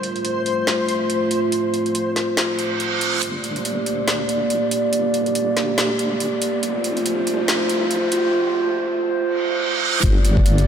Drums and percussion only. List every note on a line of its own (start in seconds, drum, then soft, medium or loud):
0.03 closed hi-hat soft
0.16 closed hi-hat soft
0.25 closed hi-hat medium
0.46 closed hi-hat soft
0.67 snare loud
0.67 closed hi-hat medium
0.89 closed hi-hat soft
1.10 closed hi-hat medium
1.31 closed hi-hat medium
1.52 closed hi-hat medium
1.74 closed hi-hat soft
1.86 closed hi-hat soft
1.95 closed hi-hat medium
2.16 snare medium
2.16 closed hi-hat soft
2.37 snare loud
2.37 closed hi-hat medium
2.59 closed hi-hat soft
2.80 closed hi-hat medium
3.01 closed hi-hat medium
3.23 closed hi-hat medium
3.44 closed hi-hat medium
3.56 closed hi-hat soft
3.65 closed hi-hat medium
3.86 closed hi-hat medium
4.08 snare loud
4.08 closed hi-hat medium
4.29 closed hi-hat medium
4.50 closed hi-hat medium
4.71 closed hi-hat medium
4.93 closed hi-hat medium
5.14 closed hi-hat medium
5.26 closed hi-hat soft
5.35 closed hi-hat medium
5.57 snare medium
5.57 closed hi-hat medium
5.78 snare loud
5.78 closed hi-hat medium
5.99 closed hi-hat medium
6.20 closed hi-hat medium
6.42 closed hi-hat medium
6.63 closed hi-hat medium
6.84 closed hi-hat medium
6.97 closed hi-hat soft
7.06 closed hi-hat medium
7.27 closed hi-hat medium
7.48 snare loud
7.48 closed hi-hat medium
7.69 closed hi-hat medium
7.91 closed hi-hat medium
8.12 closed hi-hat medium
10.03 kick loud
10.03 closed hi-hat medium
10.25 closed hi-hat medium
10.37 kick medium
10.46 closed hi-hat medium
10.58 closed hi-hat soft